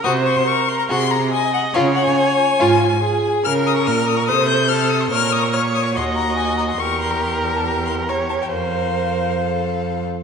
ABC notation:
X:1
M:4/4
L:1/16
Q:1/4=142
K:Db
V:1 name="Violin"
e'2 d' c' d'2 c' b c'2 b2 a2 g2 | f2 g a a12 | [K:Bbm] f'2 e' d' f'2 e' d' e'2 =g'2 f'2 e' c' | f'2 e' d' f'2 e' d' c'2 b2 a2 b c' |
^c'2 =c' b c'2 b =a b2 c'2 b2 a =g | f12- f2 z2 |]
V:2 name="Viola"
c4 B4 A4 e4 | d8 F4 A4 | [K:Bbm] B8 c4 =A4 | B4 d4 e8 |
B12 ^c4 | c12- c2 z2 |]
V:3 name="Violin"
G2 z6 G2 z6 | F2 z6 F2 z6 | [K:Bbm] B4 B4 =A8 | d4 d4 G8 |
=G8 G4 G4 | B8 =A6 z2 |]
V:4 name="Cello" clef=bass
C,4 z4 C,4 z4 | D,4 z4 A,,4 z4 | [K:Bbm] D,4 B,,4 C,8 | B,,8 E,,8 |
=E,,16 | F,,12- F,,2 z2 |]